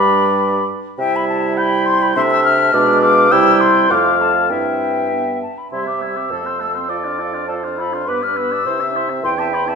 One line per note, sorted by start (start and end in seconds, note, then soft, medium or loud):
0.00 0.69 G2 medium
0.00 0.69 G3 medium
0.00 0.66 D4 medium
0.00 0.67 D5 medium
0.00 0.67 B5 loud
0.98 2.12 C3 medium
0.98 2.13 G3 medium
0.98 2.18 E4 medium
0.98 1.59 E5 medium
0.98 1.18 G5 loud
1.16 1.28 B5 medium
1.28 1.56 A5 medium
1.57 2.16 G5 medium
1.57 1.88 B5 loud
1.86 2.04 C6 loud
2.02 2.15 B5 loud
2.15 2.73 C3 loud
2.15 2.73 A3 medium
2.15 2.73 D4 medium
2.15 2.75 E5 loud
2.15 2.21 C6 loud
2.31 2.44 E6 loud
2.44 3.01 F6 loud
2.73 3.31 B2 loud
2.73 3.30 G#3 medium
2.73 3.31 D4 medium
2.73 3.04 D5 medium
3.02 3.33 F5 loud
3.02 3.33 D6 loud
3.31 3.92 C3 medium
3.31 3.86 G3 medium
3.31 3.87 E4 medium
3.31 3.92 G5 loud
3.31 3.62 E6 loud
3.61 3.93 C6 loud
3.90 4.52 F2 medium
3.90 4.52 A3 medium
3.90 4.51 F4 medium
3.90 4.50 F5 loud
3.90 4.23 D6 loud
4.21 4.51 A5 medium
4.50 5.42 G2 medium
4.50 5.13 C4 medium
4.50 5.10 E4 medium
4.50 5.40 E5 medium
4.50 5.42 G5 medium
5.11 5.42 B3 soft
5.11 5.25 D4 soft
5.42 5.59 A5 medium
5.58 5.71 B5 soft
5.71 6.33 C3 soft
5.71 5.89 G3 soft
5.71 5.89 E4 soft
5.71 6.27 E5 medium
5.71 5.86 C6 medium
5.87 6.03 C4 soft
5.87 6.03 G4 soft
5.87 6.02 D6 medium
6.01 6.18 G3 soft
6.01 6.18 E4 soft
6.01 6.91 E6 medium
6.16 6.31 C4 soft
6.16 6.31 G4 soft
6.31 8.09 F2 soft
6.31 6.47 A3 soft
6.31 6.47 A4 soft
6.31 6.90 C5 soft
6.46 6.62 C4 soft
6.46 6.62 C5 soft
6.60 6.77 A3 soft
6.60 6.77 A4 soft
6.75 6.89 C4 soft
6.75 6.89 C5 soft
6.89 7.07 F4 soft
6.89 7.05 A4 soft
6.89 7.50 D5 medium
6.89 7.47 D6 medium
7.04 7.21 D4 soft
7.04 7.20 F4 soft
7.19 7.36 F4 soft
7.19 7.35 A4 soft
7.34 7.49 D4 soft
7.34 7.48 F4 soft
7.48 7.66 F4 soft
7.48 7.65 A4 soft
7.48 8.07 C5 medium
7.48 7.55 A5 medium
7.64 7.80 D4 soft
7.64 7.81 F4 soft
7.78 7.94 F4 soft
7.78 7.94 A4 soft
7.78 7.96 B5 medium
7.93 8.07 D4 soft
7.93 8.06 F4 soft
7.93 8.10 C6 medium
8.06 8.68 G2 medium
8.06 8.24 B3 soft
8.06 8.23 B4 medium
8.06 8.68 B4 medium
8.06 8.25 D6 medium
8.22 8.39 D4 soft
8.22 8.38 D5 soft
8.22 8.38 F6 medium
8.36 8.54 B3 soft
8.36 8.53 B4 soft
8.36 9.23 E6 medium
8.51 8.66 D4 soft
8.51 8.65 D5 soft
8.66 9.26 C3 medium
8.66 8.82 E4 soft
8.66 8.82 C5 soft
8.66 8.95 C5 medium
8.80 8.96 C4 soft
8.80 8.97 E5 soft
8.95 9.11 E4 medium
8.95 9.11 C5 soft
8.95 9.09 E5 medium
9.09 9.23 C4 medium
9.09 9.24 E5 medium
9.24 9.75 E2 medium
9.24 9.39 E4 medium
9.24 9.40 C5 medium
9.24 9.75 G5 medium
9.24 9.30 C6 loud
9.38 9.54 C4 medium
9.38 9.55 E5 medium
9.38 9.51 A5 medium
9.52 9.69 E4 medium
9.52 9.70 C5 medium
9.52 9.67 B5 medium
9.67 9.75 C4 medium
9.67 9.75 E5 medium
9.67 9.75 A5 medium